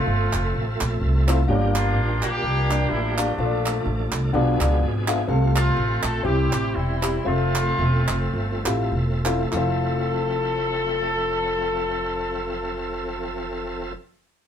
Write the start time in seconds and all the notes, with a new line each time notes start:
Already playing: F3 A3 C4 F4 A4 E5
0.07 G1
0.33 F1, clap
0.54 A1
0.81 A#1, clap
1.02 C2
1.27 A3 C4 E4 F4 C5, clap
1.47 G1 G2 F3 G3 A#3 D4 F4 G4 C#5
1.55 D5
1.76 A#3 D4 F4, clap
1.97 A1
2.22 A#1 A#3 D4 G4, clap
2.44 C2
2.69 A#3 D4 F4 G4 D5, clap
2.90 A1 E4
3.17 F3 A3 A#3 D4 F4 G4 D5, clap
3.38 A#1 A#2 F3 A3 D4 F4 A4 C5
3.46 D5
3.66 clap
3.86 A1
4.12 C2, clap
4.33 B1 B2 F3 G#3 B3 D4 F4 G#4 D5
4.60 C#2 B3 D4 F4 G#4 D5, clap
4.81 G#1
5.07 B3 D4 F4 G#4 E5, clap
5.27 C2 C3 A3 C4 F4 A4
5.56 A3 C4 F4, clap
5.76 A1
6.03 A#1 A4, clap
6.23 C2 C3 G3 C4 D#4 E4 G4
6.31 E4
6.52 A1 C4 E4 G4, clap
6.75 E1 G3 C4 E4
7.02 C4 E4 G4, clap
7.24 F1 F3 G#3 A3 C4 F4 G#4 C5 E5
7.30 A3 A4
7.55 clap
7.78 E1
8.08 F1, clap
8.34 G1
8.65 A1 A3 C4 E4 F4 G4, clap
8.92 E1
9.25 A3 C4 E4 F4 C5, clap
9.49 F1 F3 A3 C4 E4 A4 E5, clap
9.53 F2 F4 A4 C5